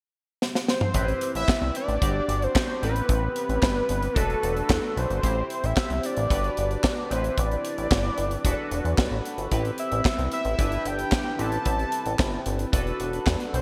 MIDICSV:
0, 0, Header, 1, 5, 480
1, 0, Start_track
1, 0, Tempo, 535714
1, 849, Time_signature, 4, 2, 24, 8
1, 12201, End_track
2, 0, Start_track
2, 0, Title_t, "Analog synth lead"
2, 0, Program_c, 0, 81
2, 624, Note_on_c, 0, 72, 94
2, 1180, Note_off_c, 0, 72, 0
2, 1221, Note_on_c, 0, 76, 109
2, 1550, Note_off_c, 0, 76, 0
2, 1582, Note_on_c, 0, 74, 98
2, 2182, Note_on_c, 0, 72, 101
2, 2195, Note_off_c, 0, 74, 0
2, 2535, Note_off_c, 0, 72, 0
2, 2546, Note_on_c, 0, 71, 93
2, 3765, Note_off_c, 0, 71, 0
2, 3765, Note_on_c, 0, 69, 93
2, 4466, Note_on_c, 0, 72, 98
2, 4479, Note_off_c, 0, 69, 0
2, 5066, Note_on_c, 0, 76, 97
2, 5079, Note_off_c, 0, 72, 0
2, 5427, Note_on_c, 0, 74, 96
2, 5440, Note_off_c, 0, 76, 0
2, 6385, Note_on_c, 0, 72, 77
2, 6399, Note_off_c, 0, 74, 0
2, 6624, Note_on_c, 0, 74, 93
2, 6638, Note_off_c, 0, 72, 0
2, 8057, Note_off_c, 0, 74, 0
2, 8776, Note_on_c, 0, 76, 83
2, 9219, Note_off_c, 0, 76, 0
2, 9260, Note_on_c, 0, 76, 93
2, 9740, Note_on_c, 0, 79, 109
2, 9753, Note_off_c, 0, 76, 0
2, 10225, Note_on_c, 0, 81, 94
2, 10238, Note_off_c, 0, 79, 0
2, 11177, Note_off_c, 0, 81, 0
2, 12141, Note_on_c, 0, 72, 96
2, 12201, Note_off_c, 0, 72, 0
2, 12201, End_track
3, 0, Start_track
3, 0, Title_t, "Analog polysynth"
3, 0, Program_c, 1, 90
3, 841, Note_on_c, 1, 60, 69
3, 843, Note_on_c, 1, 64, 65
3, 849, Note_on_c, 1, 67, 67
3, 853, Note_on_c, 1, 71, 78
3, 1786, Note_off_c, 1, 60, 0
3, 1787, Note_off_c, 1, 64, 0
3, 1790, Note_off_c, 1, 67, 0
3, 1792, Note_off_c, 1, 71, 0
3, 1807, Note_on_c, 1, 62, 67
3, 1809, Note_on_c, 1, 66, 62
3, 1811, Note_on_c, 1, 67, 63
3, 1813, Note_on_c, 1, 74, 70
3, 2522, Note_off_c, 1, 67, 0
3, 2524, Note_on_c, 1, 60, 67
3, 2528, Note_off_c, 1, 62, 0
3, 2529, Note_off_c, 1, 66, 0
3, 2530, Note_on_c, 1, 64, 59
3, 2531, Note_off_c, 1, 74, 0
3, 2533, Note_on_c, 1, 67, 58
3, 2541, Note_on_c, 1, 71, 68
3, 3703, Note_off_c, 1, 60, 0
3, 3706, Note_off_c, 1, 64, 0
3, 3707, Note_off_c, 1, 67, 0
3, 3711, Note_off_c, 1, 71, 0
3, 3716, Note_on_c, 1, 62, 86
3, 3721, Note_on_c, 1, 66, 75
3, 3729, Note_on_c, 1, 69, 72
3, 3733, Note_on_c, 1, 71, 90
3, 4663, Note_off_c, 1, 62, 0
3, 4666, Note_off_c, 1, 66, 0
3, 4670, Note_off_c, 1, 69, 0
3, 4672, Note_off_c, 1, 71, 0
3, 4677, Note_on_c, 1, 60, 62
3, 4682, Note_on_c, 1, 64, 51
3, 4688, Note_on_c, 1, 67, 60
3, 4693, Note_on_c, 1, 72, 63
3, 5624, Note_off_c, 1, 60, 0
3, 5626, Note_off_c, 1, 64, 0
3, 5629, Note_off_c, 1, 67, 0
3, 5632, Note_off_c, 1, 72, 0
3, 5644, Note_on_c, 1, 62, 65
3, 5648, Note_on_c, 1, 66, 59
3, 5650, Note_on_c, 1, 67, 67
3, 5650, Note_on_c, 1, 71, 72
3, 6362, Note_off_c, 1, 67, 0
3, 6363, Note_on_c, 1, 60, 66
3, 6365, Note_off_c, 1, 71, 0
3, 6367, Note_off_c, 1, 62, 0
3, 6368, Note_off_c, 1, 66, 0
3, 6368, Note_on_c, 1, 64, 57
3, 6373, Note_on_c, 1, 67, 61
3, 6376, Note_on_c, 1, 71, 74
3, 7542, Note_off_c, 1, 60, 0
3, 7544, Note_off_c, 1, 64, 0
3, 7547, Note_off_c, 1, 67, 0
3, 7548, Note_off_c, 1, 71, 0
3, 7566, Note_on_c, 1, 62, 80
3, 7570, Note_on_c, 1, 66, 80
3, 7573, Note_on_c, 1, 68, 55
3, 7578, Note_on_c, 1, 71, 86
3, 7629, Note_off_c, 1, 68, 0
3, 7632, Note_on_c, 1, 69, 72
3, 8508, Note_off_c, 1, 62, 0
3, 8510, Note_off_c, 1, 66, 0
3, 8514, Note_off_c, 1, 71, 0
3, 8524, Note_on_c, 1, 60, 76
3, 8527, Note_on_c, 1, 64, 63
3, 8534, Note_on_c, 1, 67, 64
3, 8537, Note_on_c, 1, 71, 76
3, 8542, Note_off_c, 1, 69, 0
3, 9467, Note_off_c, 1, 60, 0
3, 9469, Note_off_c, 1, 64, 0
3, 9472, Note_off_c, 1, 67, 0
3, 9474, Note_off_c, 1, 71, 0
3, 9481, Note_on_c, 1, 62, 72
3, 9485, Note_on_c, 1, 64, 57
3, 9489, Note_on_c, 1, 71, 74
3, 9490, Note_on_c, 1, 67, 63
3, 10198, Note_off_c, 1, 64, 0
3, 10201, Note_off_c, 1, 67, 0
3, 10201, Note_on_c, 1, 60, 65
3, 10205, Note_off_c, 1, 62, 0
3, 10206, Note_off_c, 1, 71, 0
3, 10209, Note_on_c, 1, 64, 60
3, 10212, Note_on_c, 1, 67, 56
3, 10217, Note_on_c, 1, 71, 69
3, 11381, Note_off_c, 1, 60, 0
3, 11385, Note_off_c, 1, 64, 0
3, 11386, Note_off_c, 1, 67, 0
3, 11389, Note_off_c, 1, 71, 0
3, 11399, Note_on_c, 1, 62, 86
3, 11404, Note_on_c, 1, 66, 76
3, 11411, Note_on_c, 1, 69, 74
3, 11413, Note_on_c, 1, 71, 88
3, 12201, Note_off_c, 1, 62, 0
3, 12201, Note_off_c, 1, 66, 0
3, 12201, Note_off_c, 1, 69, 0
3, 12201, Note_off_c, 1, 71, 0
3, 12201, End_track
4, 0, Start_track
4, 0, Title_t, "Analog synth bass"
4, 0, Program_c, 2, 38
4, 847, Note_on_c, 2, 33, 118
4, 1022, Note_off_c, 2, 33, 0
4, 1209, Note_on_c, 2, 33, 97
4, 1296, Note_off_c, 2, 33, 0
4, 1449, Note_on_c, 2, 36, 85
4, 1536, Note_off_c, 2, 36, 0
4, 1688, Note_on_c, 2, 33, 100
4, 1775, Note_off_c, 2, 33, 0
4, 1810, Note_on_c, 2, 31, 110
4, 1984, Note_off_c, 2, 31, 0
4, 2048, Note_on_c, 2, 31, 97
4, 2223, Note_off_c, 2, 31, 0
4, 2530, Note_on_c, 2, 33, 98
4, 2704, Note_off_c, 2, 33, 0
4, 2769, Note_on_c, 2, 33, 114
4, 2943, Note_off_c, 2, 33, 0
4, 3129, Note_on_c, 2, 33, 98
4, 3216, Note_off_c, 2, 33, 0
4, 3248, Note_on_c, 2, 31, 95
4, 3423, Note_off_c, 2, 31, 0
4, 3488, Note_on_c, 2, 31, 89
4, 3663, Note_off_c, 2, 31, 0
4, 3729, Note_on_c, 2, 28, 108
4, 3903, Note_off_c, 2, 28, 0
4, 3973, Note_on_c, 2, 28, 86
4, 4146, Note_off_c, 2, 28, 0
4, 4209, Note_on_c, 2, 40, 99
4, 4296, Note_off_c, 2, 40, 0
4, 4450, Note_on_c, 2, 35, 96
4, 4537, Note_off_c, 2, 35, 0
4, 4573, Note_on_c, 2, 31, 88
4, 4658, Note_off_c, 2, 31, 0
4, 4689, Note_on_c, 2, 33, 115
4, 4863, Note_off_c, 2, 33, 0
4, 5052, Note_on_c, 2, 33, 89
4, 5138, Note_off_c, 2, 33, 0
4, 5289, Note_on_c, 2, 36, 94
4, 5376, Note_off_c, 2, 36, 0
4, 5531, Note_on_c, 2, 33, 91
4, 5617, Note_off_c, 2, 33, 0
4, 5650, Note_on_c, 2, 31, 115
4, 5824, Note_off_c, 2, 31, 0
4, 5892, Note_on_c, 2, 31, 89
4, 6065, Note_off_c, 2, 31, 0
4, 6370, Note_on_c, 2, 33, 106
4, 6544, Note_off_c, 2, 33, 0
4, 6609, Note_on_c, 2, 33, 107
4, 6784, Note_off_c, 2, 33, 0
4, 6970, Note_on_c, 2, 33, 79
4, 7056, Note_off_c, 2, 33, 0
4, 7088, Note_on_c, 2, 31, 108
4, 7263, Note_off_c, 2, 31, 0
4, 7329, Note_on_c, 2, 31, 85
4, 7503, Note_off_c, 2, 31, 0
4, 7568, Note_on_c, 2, 28, 104
4, 7656, Note_off_c, 2, 28, 0
4, 7809, Note_on_c, 2, 28, 85
4, 7896, Note_off_c, 2, 28, 0
4, 7928, Note_on_c, 2, 40, 90
4, 8015, Note_off_c, 2, 40, 0
4, 8047, Note_on_c, 2, 35, 93
4, 8135, Note_off_c, 2, 35, 0
4, 8165, Note_on_c, 2, 33, 84
4, 8254, Note_off_c, 2, 33, 0
4, 8404, Note_on_c, 2, 31, 88
4, 8493, Note_off_c, 2, 31, 0
4, 8526, Note_on_c, 2, 33, 107
4, 8702, Note_off_c, 2, 33, 0
4, 8888, Note_on_c, 2, 33, 91
4, 8976, Note_off_c, 2, 33, 0
4, 9127, Note_on_c, 2, 36, 85
4, 9215, Note_off_c, 2, 36, 0
4, 9365, Note_on_c, 2, 33, 102
4, 9454, Note_off_c, 2, 33, 0
4, 9486, Note_on_c, 2, 31, 105
4, 9661, Note_off_c, 2, 31, 0
4, 9725, Note_on_c, 2, 31, 92
4, 9901, Note_off_c, 2, 31, 0
4, 10205, Note_on_c, 2, 33, 102
4, 10381, Note_off_c, 2, 33, 0
4, 10446, Note_on_c, 2, 33, 115
4, 10621, Note_off_c, 2, 33, 0
4, 10804, Note_on_c, 2, 33, 92
4, 10893, Note_off_c, 2, 33, 0
4, 10924, Note_on_c, 2, 31, 90
4, 11100, Note_off_c, 2, 31, 0
4, 11168, Note_on_c, 2, 31, 90
4, 11343, Note_off_c, 2, 31, 0
4, 11408, Note_on_c, 2, 28, 107
4, 11583, Note_off_c, 2, 28, 0
4, 11645, Note_on_c, 2, 28, 83
4, 11821, Note_off_c, 2, 28, 0
4, 11885, Note_on_c, 2, 40, 96
4, 11974, Note_off_c, 2, 40, 0
4, 12124, Note_on_c, 2, 35, 108
4, 12201, Note_off_c, 2, 35, 0
4, 12201, End_track
5, 0, Start_track
5, 0, Title_t, "Drums"
5, 377, Note_on_c, 9, 38, 69
5, 467, Note_off_c, 9, 38, 0
5, 496, Note_on_c, 9, 38, 79
5, 586, Note_off_c, 9, 38, 0
5, 613, Note_on_c, 9, 38, 84
5, 703, Note_off_c, 9, 38, 0
5, 726, Note_on_c, 9, 45, 90
5, 816, Note_off_c, 9, 45, 0
5, 844, Note_on_c, 9, 42, 89
5, 847, Note_on_c, 9, 36, 80
5, 934, Note_off_c, 9, 42, 0
5, 937, Note_off_c, 9, 36, 0
5, 971, Note_on_c, 9, 42, 34
5, 1060, Note_off_c, 9, 42, 0
5, 1087, Note_on_c, 9, 42, 77
5, 1176, Note_off_c, 9, 42, 0
5, 1212, Note_on_c, 9, 42, 52
5, 1301, Note_off_c, 9, 42, 0
5, 1328, Note_on_c, 9, 36, 109
5, 1330, Note_on_c, 9, 39, 79
5, 1338, Note_on_c, 9, 38, 103
5, 1418, Note_off_c, 9, 36, 0
5, 1419, Note_off_c, 9, 39, 0
5, 1427, Note_off_c, 9, 38, 0
5, 1567, Note_on_c, 9, 42, 77
5, 1657, Note_off_c, 9, 42, 0
5, 1689, Note_on_c, 9, 42, 48
5, 1778, Note_off_c, 9, 42, 0
5, 1808, Note_on_c, 9, 36, 112
5, 1811, Note_on_c, 9, 42, 94
5, 1898, Note_off_c, 9, 36, 0
5, 1901, Note_off_c, 9, 42, 0
5, 2051, Note_on_c, 9, 42, 76
5, 2141, Note_off_c, 9, 42, 0
5, 2171, Note_on_c, 9, 42, 36
5, 2261, Note_off_c, 9, 42, 0
5, 2288, Note_on_c, 9, 36, 108
5, 2288, Note_on_c, 9, 39, 90
5, 2296, Note_on_c, 9, 38, 113
5, 2377, Note_off_c, 9, 36, 0
5, 2377, Note_off_c, 9, 39, 0
5, 2385, Note_off_c, 9, 38, 0
5, 2536, Note_on_c, 9, 42, 73
5, 2626, Note_off_c, 9, 42, 0
5, 2650, Note_on_c, 9, 42, 49
5, 2740, Note_off_c, 9, 42, 0
5, 2769, Note_on_c, 9, 36, 94
5, 2769, Note_on_c, 9, 42, 89
5, 2858, Note_off_c, 9, 42, 0
5, 2859, Note_off_c, 9, 36, 0
5, 3009, Note_on_c, 9, 42, 78
5, 3099, Note_off_c, 9, 42, 0
5, 3131, Note_on_c, 9, 42, 46
5, 3221, Note_off_c, 9, 42, 0
5, 3247, Note_on_c, 9, 39, 85
5, 3248, Note_on_c, 9, 36, 115
5, 3254, Note_on_c, 9, 38, 106
5, 3336, Note_off_c, 9, 39, 0
5, 3338, Note_off_c, 9, 36, 0
5, 3344, Note_off_c, 9, 38, 0
5, 3486, Note_on_c, 9, 42, 77
5, 3575, Note_off_c, 9, 42, 0
5, 3606, Note_on_c, 9, 42, 51
5, 3696, Note_off_c, 9, 42, 0
5, 3729, Note_on_c, 9, 36, 110
5, 3733, Note_on_c, 9, 42, 85
5, 3819, Note_off_c, 9, 36, 0
5, 3823, Note_off_c, 9, 42, 0
5, 3852, Note_on_c, 9, 42, 33
5, 3942, Note_off_c, 9, 42, 0
5, 3973, Note_on_c, 9, 42, 63
5, 4062, Note_off_c, 9, 42, 0
5, 4091, Note_on_c, 9, 42, 43
5, 4180, Note_off_c, 9, 42, 0
5, 4207, Note_on_c, 9, 39, 90
5, 4208, Note_on_c, 9, 36, 110
5, 4215, Note_on_c, 9, 38, 113
5, 4297, Note_off_c, 9, 39, 0
5, 4298, Note_off_c, 9, 36, 0
5, 4305, Note_off_c, 9, 38, 0
5, 4457, Note_on_c, 9, 42, 72
5, 4547, Note_off_c, 9, 42, 0
5, 4574, Note_on_c, 9, 42, 44
5, 4663, Note_off_c, 9, 42, 0
5, 4690, Note_on_c, 9, 36, 84
5, 4691, Note_on_c, 9, 42, 85
5, 4779, Note_off_c, 9, 36, 0
5, 4781, Note_off_c, 9, 42, 0
5, 4929, Note_on_c, 9, 42, 73
5, 5019, Note_off_c, 9, 42, 0
5, 5050, Note_on_c, 9, 42, 53
5, 5140, Note_off_c, 9, 42, 0
5, 5164, Note_on_c, 9, 39, 86
5, 5167, Note_on_c, 9, 36, 110
5, 5172, Note_on_c, 9, 38, 112
5, 5254, Note_off_c, 9, 39, 0
5, 5257, Note_off_c, 9, 36, 0
5, 5261, Note_off_c, 9, 38, 0
5, 5290, Note_on_c, 9, 42, 37
5, 5379, Note_off_c, 9, 42, 0
5, 5407, Note_on_c, 9, 42, 81
5, 5497, Note_off_c, 9, 42, 0
5, 5525, Note_on_c, 9, 42, 56
5, 5614, Note_off_c, 9, 42, 0
5, 5649, Note_on_c, 9, 36, 104
5, 5654, Note_on_c, 9, 42, 89
5, 5738, Note_off_c, 9, 36, 0
5, 5744, Note_off_c, 9, 42, 0
5, 5771, Note_on_c, 9, 42, 33
5, 5860, Note_off_c, 9, 42, 0
5, 5889, Note_on_c, 9, 42, 72
5, 5978, Note_off_c, 9, 42, 0
5, 6010, Note_on_c, 9, 42, 41
5, 6100, Note_off_c, 9, 42, 0
5, 6123, Note_on_c, 9, 39, 93
5, 6126, Note_on_c, 9, 36, 100
5, 6131, Note_on_c, 9, 38, 111
5, 6213, Note_off_c, 9, 39, 0
5, 6216, Note_off_c, 9, 36, 0
5, 6221, Note_off_c, 9, 38, 0
5, 6373, Note_on_c, 9, 42, 69
5, 6462, Note_off_c, 9, 42, 0
5, 6490, Note_on_c, 9, 42, 44
5, 6579, Note_off_c, 9, 42, 0
5, 6609, Note_on_c, 9, 36, 95
5, 6609, Note_on_c, 9, 42, 82
5, 6698, Note_off_c, 9, 36, 0
5, 6698, Note_off_c, 9, 42, 0
5, 6733, Note_on_c, 9, 42, 34
5, 6822, Note_off_c, 9, 42, 0
5, 6851, Note_on_c, 9, 42, 80
5, 6940, Note_off_c, 9, 42, 0
5, 6971, Note_on_c, 9, 42, 51
5, 7061, Note_off_c, 9, 42, 0
5, 7088, Note_on_c, 9, 36, 116
5, 7088, Note_on_c, 9, 39, 84
5, 7096, Note_on_c, 9, 38, 105
5, 7178, Note_off_c, 9, 36, 0
5, 7178, Note_off_c, 9, 39, 0
5, 7186, Note_off_c, 9, 38, 0
5, 7326, Note_on_c, 9, 42, 75
5, 7416, Note_off_c, 9, 42, 0
5, 7446, Note_on_c, 9, 42, 48
5, 7536, Note_off_c, 9, 42, 0
5, 7568, Note_on_c, 9, 36, 110
5, 7570, Note_on_c, 9, 42, 98
5, 7657, Note_off_c, 9, 36, 0
5, 7660, Note_off_c, 9, 42, 0
5, 7808, Note_on_c, 9, 42, 64
5, 7898, Note_off_c, 9, 42, 0
5, 7931, Note_on_c, 9, 42, 40
5, 8021, Note_off_c, 9, 42, 0
5, 8044, Note_on_c, 9, 39, 94
5, 8046, Note_on_c, 9, 36, 107
5, 8052, Note_on_c, 9, 38, 107
5, 8134, Note_off_c, 9, 39, 0
5, 8136, Note_off_c, 9, 36, 0
5, 8142, Note_off_c, 9, 38, 0
5, 8292, Note_on_c, 9, 42, 65
5, 8382, Note_off_c, 9, 42, 0
5, 8406, Note_on_c, 9, 42, 49
5, 8495, Note_off_c, 9, 42, 0
5, 8525, Note_on_c, 9, 42, 80
5, 8527, Note_on_c, 9, 36, 83
5, 8615, Note_off_c, 9, 42, 0
5, 8616, Note_off_c, 9, 36, 0
5, 8646, Note_on_c, 9, 42, 35
5, 8736, Note_off_c, 9, 42, 0
5, 8762, Note_on_c, 9, 42, 68
5, 8851, Note_off_c, 9, 42, 0
5, 8885, Note_on_c, 9, 42, 50
5, 8975, Note_off_c, 9, 42, 0
5, 9004, Note_on_c, 9, 39, 83
5, 9006, Note_on_c, 9, 36, 112
5, 9012, Note_on_c, 9, 38, 103
5, 9093, Note_off_c, 9, 39, 0
5, 9095, Note_off_c, 9, 36, 0
5, 9101, Note_off_c, 9, 38, 0
5, 9128, Note_on_c, 9, 42, 36
5, 9218, Note_off_c, 9, 42, 0
5, 9243, Note_on_c, 9, 42, 73
5, 9333, Note_off_c, 9, 42, 0
5, 9361, Note_on_c, 9, 42, 51
5, 9451, Note_off_c, 9, 42, 0
5, 9486, Note_on_c, 9, 36, 101
5, 9488, Note_on_c, 9, 42, 90
5, 9575, Note_off_c, 9, 36, 0
5, 9578, Note_off_c, 9, 42, 0
5, 9604, Note_on_c, 9, 42, 37
5, 9694, Note_off_c, 9, 42, 0
5, 9726, Note_on_c, 9, 42, 73
5, 9816, Note_off_c, 9, 42, 0
5, 9845, Note_on_c, 9, 42, 43
5, 9934, Note_off_c, 9, 42, 0
5, 9959, Note_on_c, 9, 39, 86
5, 9963, Note_on_c, 9, 36, 112
5, 9967, Note_on_c, 9, 38, 113
5, 10048, Note_off_c, 9, 39, 0
5, 10053, Note_off_c, 9, 36, 0
5, 10056, Note_off_c, 9, 38, 0
5, 10208, Note_on_c, 9, 42, 67
5, 10297, Note_off_c, 9, 42, 0
5, 10322, Note_on_c, 9, 42, 47
5, 10412, Note_off_c, 9, 42, 0
5, 10442, Note_on_c, 9, 42, 85
5, 10445, Note_on_c, 9, 36, 85
5, 10532, Note_off_c, 9, 42, 0
5, 10535, Note_off_c, 9, 36, 0
5, 10567, Note_on_c, 9, 42, 34
5, 10657, Note_off_c, 9, 42, 0
5, 10681, Note_on_c, 9, 42, 77
5, 10770, Note_off_c, 9, 42, 0
5, 10802, Note_on_c, 9, 42, 50
5, 10892, Note_off_c, 9, 42, 0
5, 10920, Note_on_c, 9, 39, 88
5, 10924, Note_on_c, 9, 36, 120
5, 10928, Note_on_c, 9, 38, 104
5, 11010, Note_off_c, 9, 39, 0
5, 11014, Note_off_c, 9, 36, 0
5, 11017, Note_off_c, 9, 38, 0
5, 11162, Note_on_c, 9, 42, 79
5, 11252, Note_off_c, 9, 42, 0
5, 11281, Note_on_c, 9, 42, 50
5, 11371, Note_off_c, 9, 42, 0
5, 11407, Note_on_c, 9, 36, 107
5, 11412, Note_on_c, 9, 42, 97
5, 11497, Note_off_c, 9, 36, 0
5, 11501, Note_off_c, 9, 42, 0
5, 11530, Note_on_c, 9, 42, 32
5, 11620, Note_off_c, 9, 42, 0
5, 11646, Note_on_c, 9, 42, 73
5, 11736, Note_off_c, 9, 42, 0
5, 11767, Note_on_c, 9, 42, 41
5, 11856, Note_off_c, 9, 42, 0
5, 11883, Note_on_c, 9, 39, 82
5, 11886, Note_on_c, 9, 36, 111
5, 11891, Note_on_c, 9, 38, 116
5, 11973, Note_off_c, 9, 39, 0
5, 11975, Note_off_c, 9, 36, 0
5, 11981, Note_off_c, 9, 38, 0
5, 12008, Note_on_c, 9, 42, 35
5, 12097, Note_off_c, 9, 42, 0
5, 12133, Note_on_c, 9, 42, 64
5, 12201, Note_off_c, 9, 42, 0
5, 12201, End_track
0, 0, End_of_file